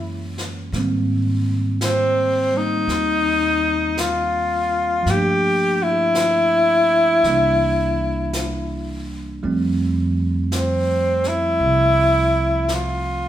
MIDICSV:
0, 0, Header, 1, 5, 480
1, 0, Start_track
1, 0, Key_signature, -1, "major"
1, 0, Tempo, 1077199
1, 326, Time_signature, 4, 2, 24, 8
1, 1767, Tempo, 1090909
1, 5867, End_track
2, 0, Start_track
2, 0, Title_t, "Alto saxophone"
2, 0, Program_c, 0, 65
2, 0, Note_on_c, 0, 64, 104
2, 172, Note_off_c, 0, 64, 0
2, 821, Note_on_c, 0, 60, 86
2, 1146, Note_on_c, 0, 63, 101
2, 1153, Note_off_c, 0, 60, 0
2, 1782, Note_on_c, 0, 65, 82
2, 1788, Note_off_c, 0, 63, 0
2, 2270, Note_on_c, 0, 67, 100
2, 2277, Note_off_c, 0, 65, 0
2, 2588, Note_on_c, 0, 64, 105
2, 2594, Note_off_c, 0, 67, 0
2, 4020, Note_off_c, 0, 64, 0
2, 4664, Note_on_c, 0, 60, 72
2, 4985, Note_on_c, 0, 64, 102
2, 4992, Note_off_c, 0, 60, 0
2, 5614, Note_off_c, 0, 64, 0
2, 5631, Note_on_c, 0, 65, 89
2, 5867, Note_off_c, 0, 65, 0
2, 5867, End_track
3, 0, Start_track
3, 0, Title_t, "Tine electric piano"
3, 0, Program_c, 1, 4
3, 0, Control_c, 1, 64, 127
3, 0, Note_on_c, 1, 52, 59
3, 0, Note_on_c, 1, 56, 50
3, 0, Note_on_c, 1, 58, 49
3, 0, Note_on_c, 1, 61, 61
3, 318, Note_off_c, 1, 52, 0
3, 322, Note_off_c, 1, 56, 0
3, 324, Note_on_c, 1, 51, 51
3, 326, Note_off_c, 1, 58, 0
3, 329, Note_on_c, 1, 55, 50
3, 330, Note_off_c, 1, 61, 0
3, 332, Control_c, 1, 64, 0
3, 337, Note_on_c, 1, 58, 48
3, 344, Note_on_c, 1, 60, 57
3, 407, Control_c, 1, 64, 127
3, 1127, Note_off_c, 1, 55, 0
3, 1132, Note_on_c, 1, 55, 41
3, 1140, Note_off_c, 1, 58, 0
3, 1145, Note_on_c, 1, 58, 45
3, 2234, Note_on_c, 1, 53, 54
3, 2245, Note_off_c, 1, 51, 0
3, 2249, Note_off_c, 1, 55, 0
3, 2252, Control_c, 1, 64, 0
3, 2252, Note_on_c, 1, 57, 46
3, 2255, Note_off_c, 1, 60, 0
3, 2256, Note_off_c, 1, 58, 0
3, 2270, Note_on_c, 1, 58, 49
3, 2285, Note_on_c, 1, 62, 56
3, 2320, Control_c, 1, 64, 127
3, 3198, Note_off_c, 1, 53, 0
3, 3207, Note_off_c, 1, 57, 0
3, 3210, Control_c, 1, 64, 0
3, 3213, Note_on_c, 1, 52, 49
3, 3216, Note_off_c, 1, 58, 0
3, 3221, Note_on_c, 1, 55, 48
3, 3223, Note_off_c, 1, 62, 0
3, 3226, Note_on_c, 1, 58, 48
3, 3233, Note_on_c, 1, 62, 60
3, 3282, Control_c, 1, 64, 127
3, 4165, Note_off_c, 1, 55, 0
3, 4171, Note_on_c, 1, 55, 53
3, 4172, Note_on_c, 1, 57, 52
3, 4173, Note_off_c, 1, 52, 0
3, 4173, Control_c, 1, 64, 0
3, 4174, Note_on_c, 1, 53, 54
3, 4180, Note_off_c, 1, 58, 0
3, 4181, Note_on_c, 1, 60, 60
3, 4183, Note_off_c, 1, 62, 0
3, 4243, Control_c, 1, 64, 127
3, 5867, Note_off_c, 1, 53, 0
3, 5867, Note_off_c, 1, 55, 0
3, 5867, Note_off_c, 1, 57, 0
3, 5867, Note_off_c, 1, 60, 0
3, 5867, End_track
4, 0, Start_track
4, 0, Title_t, "Upright bass"
4, 0, Program_c, 2, 32
4, 0, Note_on_c, 2, 42, 77
4, 309, Note_off_c, 2, 42, 0
4, 322, Note_on_c, 2, 44, 85
4, 1264, Note_off_c, 2, 44, 0
4, 1279, Note_on_c, 2, 39, 77
4, 2226, Note_off_c, 2, 39, 0
4, 2247, Note_on_c, 2, 43, 71
4, 3187, Note_off_c, 2, 43, 0
4, 3206, Note_on_c, 2, 36, 70
4, 4152, Note_off_c, 2, 36, 0
4, 4173, Note_on_c, 2, 41, 75
4, 5114, Note_off_c, 2, 41, 0
4, 5126, Note_on_c, 2, 36, 80
4, 5867, Note_off_c, 2, 36, 0
4, 5867, End_track
5, 0, Start_track
5, 0, Title_t, "Drums"
5, 169, Note_on_c, 9, 38, 30
5, 213, Note_off_c, 9, 38, 0
5, 326, Note_on_c, 9, 25, 38
5, 326, Note_on_c, 9, 38, 30
5, 370, Note_off_c, 9, 38, 0
5, 806, Note_off_c, 9, 25, 0
5, 806, Note_on_c, 9, 25, 33
5, 806, Note_on_c, 9, 38, 47
5, 806, Note_on_c, 9, 44, 50
5, 851, Note_off_c, 9, 38, 0
5, 851, Note_off_c, 9, 44, 0
5, 1287, Note_off_c, 9, 25, 0
5, 1287, Note_on_c, 9, 25, 37
5, 1287, Note_on_c, 9, 38, 31
5, 1331, Note_off_c, 9, 38, 0
5, 1771, Note_off_c, 9, 25, 0
5, 1771, Note_on_c, 9, 25, 33
5, 1771, Note_on_c, 9, 38, 43
5, 1771, Note_on_c, 9, 44, 59
5, 1815, Note_off_c, 9, 38, 0
5, 1815, Note_off_c, 9, 44, 0
5, 2250, Note_off_c, 9, 25, 0
5, 2250, Note_on_c, 9, 25, 36
5, 2250, Note_on_c, 9, 38, 31
5, 2294, Note_off_c, 9, 38, 0
5, 2727, Note_off_c, 9, 25, 0
5, 2727, Note_on_c, 9, 25, 38
5, 2727, Note_on_c, 9, 38, 44
5, 2727, Note_on_c, 9, 44, 54
5, 2771, Note_off_c, 9, 38, 0
5, 2771, Note_off_c, 9, 44, 0
5, 3207, Note_off_c, 9, 25, 0
5, 3207, Note_on_c, 9, 25, 36
5, 3207, Note_on_c, 9, 38, 33
5, 3251, Note_off_c, 9, 38, 0
5, 3689, Note_off_c, 9, 25, 0
5, 3689, Note_on_c, 9, 25, 37
5, 3689, Note_on_c, 9, 38, 45
5, 3689, Note_on_c, 9, 44, 62
5, 3733, Note_off_c, 9, 38, 0
5, 3733, Note_off_c, 9, 44, 0
5, 4168, Note_off_c, 9, 25, 0
5, 4168, Note_on_c, 9, 25, 37
5, 4650, Note_off_c, 9, 25, 0
5, 4650, Note_on_c, 9, 25, 37
5, 4650, Note_on_c, 9, 38, 46
5, 4650, Note_on_c, 9, 44, 58
5, 4694, Note_off_c, 9, 38, 0
5, 4694, Note_off_c, 9, 44, 0
5, 4967, Note_on_c, 9, 38, 28
5, 5011, Note_off_c, 9, 38, 0
5, 5127, Note_off_c, 9, 25, 0
5, 5127, Note_on_c, 9, 25, 38
5, 5603, Note_off_c, 9, 25, 0
5, 5603, Note_on_c, 9, 25, 38
5, 5603, Note_on_c, 9, 38, 46
5, 5603, Note_on_c, 9, 44, 53
5, 5647, Note_off_c, 9, 38, 0
5, 5647, Note_off_c, 9, 44, 0
5, 5867, Note_off_c, 9, 25, 0
5, 5867, End_track
0, 0, End_of_file